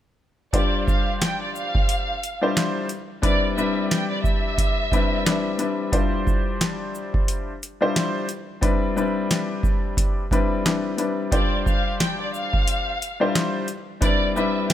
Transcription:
0.53 G3 D4 F4 G4 C5 D5, kick, closed hi-hat
0.88 F5, kick, shaker
1.21 G5, snare, closed hi-hat
1.42 D5
1.55 F5, shaker
1.75 kick
1.89 closed hi-hat
2.23 closed hi-hat, shaker
2.41 G3 D4 E4 F4 C5
2.57 snare, closed hi-hat
2.89 closed hi-hat, shaker
3.22 G3 C4 D4 E4 B4 D5, kick, closed hi-hat
3.57 G3 C4 D4 E4 B4 E5, shaker
3.91 G5, snare, closed hi-hat
4.11 D5
4.24 E5, kick, shaker
4.58 kick, closed hi-hat
4.92 G3 C4 D4 E4 B4, kick, closed hi-hat, shaker
5.26 G3 C4 D4 E4 B4, snare, closed hi-hat
5.58 G3 C4 D4 E4 B4, closed hi-hat, shaker
5.92 G3 D4 E4 F4 C5, kick, closed hi-hat
6.27 kick, shaker
6.61 snare, closed hi-hat
6.95 shaker
7.14 kick
7.28 closed hi-hat
7.63 closed hi-hat, shaker
7.81 G3 D4 E4 F4 C5
7.96 snare, closed hi-hat
8.29 closed hi-hat, shaker
8.61 G3 C4 D4 E4 B4, kick, closed hi-hat
8.96 G3 C4 D4 E4 B4, shaker
9.31 snare, closed hi-hat
9.63 kick, shaker
9.97 kick, closed hi-hat
10.31 G3 C4 D4 E4 B4, kick, closed hi-hat, shaker
10.65 G3 C4 D4 E4 B4, snare, closed hi-hat
10.97 G3 C4 D4 E4 B4, closed hi-hat, shaker
11.31 G3 D4 F4 G4 C5 D5, kick, closed hi-hat
11.66 F5, kick, shaker
12.00 G5, snare, closed hi-hat
12.20 D5
12.34 F5, shaker
12.54 kick
12.68 closed hi-hat
13.02 closed hi-hat, shaker
13.20 G3 D4 E4 F4 C5
13.35 snare, closed hi-hat
13.68 closed hi-hat, shaker
14.00 G3 C4 D4 E4 B4 D5, kick, closed hi-hat
14.35 G3 C4 D4 E4 B4 E5, shaker
14.69 G5, snare, closed hi-hat

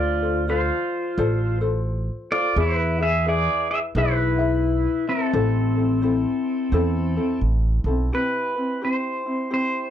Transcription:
Already playing: D2 F4 A4 C5 D5
0.22 F4 A4 C5
0.48 F4 A4 C5 D5
1.17 A1 F4 A4 C5 D5
1.61 F4 A4 C5
2.31 F4 A4 C5 D5
2.56 E2 E4 G#4 B4 E5
2.60 E4
2.98 E4 G#4 E5
3.03 G#4 E5
3.26 E4 G#4 B4 D5 E5
3.71 G#4 E5
3.95 B1 E4 G#4 B4 E5
4.38 E4 G#4 E5
5.07 C4 E4 A4 E5
5.33 A1 C4 E4 A4 C5
5.76 C4 E4 A4
6.02 C4 E4 A4 C5
6.72 E2 C4 E4 A4 C5
7.17 C4 E4 A4
7.41 A1
7.84 B1 C4 E4 A4
8.12 C4 E4 G4 B4
8.56 C4 E4 B4
8.81 C4 E4 G4 C5
9.26 C4 E4
9.50 C4 E4 G4 C5

